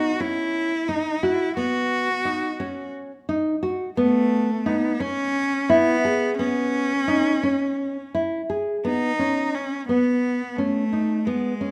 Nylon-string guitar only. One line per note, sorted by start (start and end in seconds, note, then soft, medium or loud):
0.00 0.11 D#4 medium
0.20 0.72 C#4 medium
0.89 1.14 D#4 medium
1.23 1.49 F#4 medium
1.57 2.08 B3 medium
2.25 2.51 D#4 medium
2.60 3.11 C#4 medium
3.29 3.54 D#4 medium
3.63 3.89 F#4 medium
3.97 4.49 B3 medium
4.66 4.92 D#4 medium
5.00 5.53 C#4 medium
5.70 5.96 E4 medium
6.05 6.31 G#4 medium
6.39 6.91 B3 medium
7.08 7.34 D#4 medium
7.43 7.96 C#4 medium
8.15 8.41 E4 medium
8.50 8.76 G#4 medium
8.85 9.11 B3 medium
9.19 9.71 C#4 medium
9.89 10.40 B3 medium
10.58 10.84 C#4 medium
10.93 11.18 D#4 medium
11.27 11.52 B3 medium
11.61 11.71 C#4 medium